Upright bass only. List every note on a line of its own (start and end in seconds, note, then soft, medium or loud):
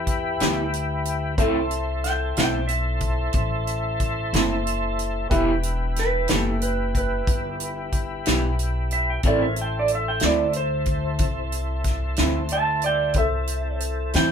0.00 0.38 E2 medium
0.41 1.36 D2 medium
1.38 2.34 C2 medium
2.38 3.33 B1 medium
3.34 4.30 A1 medium
4.33 5.29 F#1 medium
5.31 6.27 E1 medium
6.32 7.26 F#1 medium
7.27 8.23 G1 medium
8.27 9.22 B1 medium
9.24 10.19 A1 medium
10.22 11.17 D2 medium
11.19 12.15 C2 medium
12.18 13.13 D2 medium
13.15 14.10 C2 medium
14.14 14.32 E2 medium